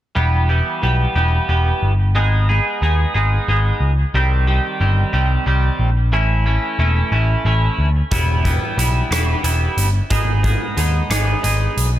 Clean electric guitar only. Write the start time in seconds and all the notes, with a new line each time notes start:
0.15 E3 G3 B3 G4
0.49 E3 G3 B3 G4
0.82 E3 G3 B3 G4
1.15 E3 G3 B3 G4
1.48 E3 G3 B3 G4
2.15 G#3 B3 D#4 G#4
2.49 G#3 B3 D#4 G#4
2.82 G#3 B3 D#4 G#4
3.14 G#3 B3 D#4 G#4
3.48 G#3 B3 D#4 G#4
4.14 D#3 G3 C4 G4
4.47 D#3 G3 C4 G4
4.80 D#3 G3 C4 G4
5.13 D#3 G3 C4 G4
5.46 D#3 G3 C4 G4
6.12 E3 A3 C#4 E4
6.46 E3 A3 C#4 E4
6.79 E3 A3 C#4 E4
7.12 E3 A3 C#4 E4
7.45 E3 A3 C#4 E4
8.11 E3 G3 B3 E4
8.45 E3 G3 B3 E4
8.78 E3 G3 B3 E4
9.11 E3 G3 B3 E4
9.43 E3 G3 B3 E4
10.10 G#3 B3 D#4 G#4
10.43 G#3 B3 D#4 G#4
10.77 G#3 B3 D#4 G#4
11.10 G#3 B3 D#4 G#4
11.43 G#3 B3 D#4 G#4